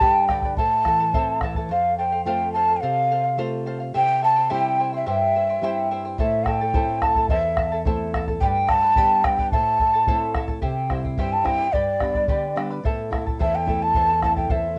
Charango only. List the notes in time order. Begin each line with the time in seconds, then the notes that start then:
0.01 G4 B4 D5 G5 B5
0.30 B4 D5 G5 B5
0.45 B4 D5 B5
0.58 E4 A4 C5 E5 A5
0.86 E4 A4 E5 A5
1.00 E4 A4 A5
1.14 E4 A4 C5 E5 A5
1.42 E4 A4 E5 A5
1.56 E4 A4 A5
1.71 A4 C5 F5
1.99 A4 C5 F5
2.12 C5 F5
2.26 A4 C5 F5
2.55 A4 C5 F5
2.68 C5 F5
2.82 A4 C5 F5
3.11 A4 C5 F5
3.24 C5 F5
3.38 A4 C5 F5
3.66 A4 C5 F5
3.80 C5 F5
3.94 E4 G4 C5 E5 G5
4.22 E4 C5 E5 G5
4.36 E4 C5 G5
4.50 E4 G4 C5 E5 G5
4.79 E4 C5 E5 G5
4.93 E4 C5 G5
5.06 E4 G4 C5 E5 G5
5.35 E4 C5 E5 G5
5.49 E4 C5 G5
5.63 E4 G4 C5 E5 G5
5.91 E4 C5 E5 G5
6.05 E4 C5 G5
6.19 E4 A4 C5 E5 A5
6.46 E4 A4 E5 A5
6.61 E4 A4 A5
6.74 E4 A4 C5 E5 A5
7.02 E4 A4 E5 A5
7.16 E4 A4 A5
7.30 E4 A4 C5 E5 A5
7.57 E4 A4 E5 A5
7.72 E4 A4 A5
7.86 E4 A4 C5 E5 A5
8.14 E4 A4 E5 A5
8.28 E4 A4 A5
8.42 G4 B4 D5 G5 B5
8.70 B4 D5 G5 B5
8.83 B4 D5 B5
8.97 G4 B4 D5 G5 B5
9.24 B4 D5 G5 B5
9.39 B4 D5 B5
9.53 E4 A4 C5 E5 A5
9.80 E4 A4 E5 A5
9.94 E4 A4 A5
10.08 E4 A4 C5 E5 A5
10.35 E4 A4 E5 A5
10.48 E4 A4 A5
10.62 E4 G4 C5 E5 G5
10.90 E4 C5 E5 G5
11.04 E4 C5 G5
11.19 E4 G4 C5 E5 G5
11.46 E4 C5 E5 G5
11.60 E4 C5 G5
11.74 G4 B4 D5 G5 B5
12.02 B4 D5 G5 B5
12.15 B4 D5 B5
12.29 G4 B4 D5 G5 B5
12.57 B4 D5 G5 B5
12.70 B4 D5 B5
12.85 E4 A4 C5 E5 A5
13.12 E4 A4 E5 A5
13.27 E4 A4 A5
13.40 E4 A4 C5 E5 A5
13.68 E4 A4 E5 A5
13.82 E4 A4 A5
13.96 E4 A4 C5 E5 A5
14.23 E4 A4 E5 A5
14.36 E4 A4 A5
14.50 E4 A4 C5 E5 A5